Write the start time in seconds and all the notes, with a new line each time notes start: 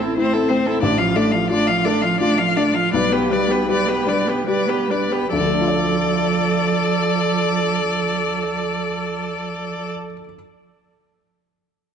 Already playing: A1 A3 E4 A4
0.00 C4 E4 A4
0.17 A3 C4 E4 C5
0.33 C4 E4 A4
0.49 A3 C4 C5
0.66 C4 E4 A4
0.82 A1 A3 D4 D5
0.98 F3 F4 F5
1.15 A3 D4 D5
1.31 F3 F4 F5
1.50 A3 D4 F4 D5
1.67 F3 F4 F5
1.85 A3 D4 A4 D5
2.02 F3 F4 F5
2.20 A3 D4 F4 D5
2.38 F3 F4 F5
2.56 A3 D4 D5
2.74 F3 F4 F5
2.92 B1 G3 B4 D5
3.11 B3 G4 B4
3.30 G3 B4 D5
3.48 B3 G4 B4
3.68 G3 G4 B4 D5
3.87 B3 G4 B4
4.07 G3 D4 B4 D5
4.27 B3 G4 B4
4.46 G3 G4 B4 D5
4.67 B3 G4 B4
4.89 G3 D4 B4 D5
5.10 B3 G4 B4
5.32 D2 F3 A4 D5
5.40 D3
5.47 A3
5.54 D4
5.61 F4
5.68 D5